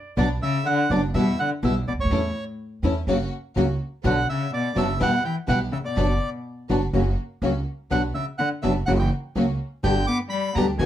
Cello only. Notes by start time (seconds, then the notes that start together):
0.17 B2
0.42 C#3
0.67 D3
0.91 B2
1.14 B2
1.40 D3
1.63 B2
1.88 B2
2.00 A2
4.06 D3
4.29 C#3
4.54 B2
4.77 C#3
5.02 B2
5.24 E3
5.49 B2
5.72 C#3
5.85 B2
7.91 D3
8.14 C#3
8.39 D3
8.63 C#3
8.88 C#3
9.00 E3
9.84 D3
10.08 B3
10.30 G3
10.54 F#3
10.77 D#3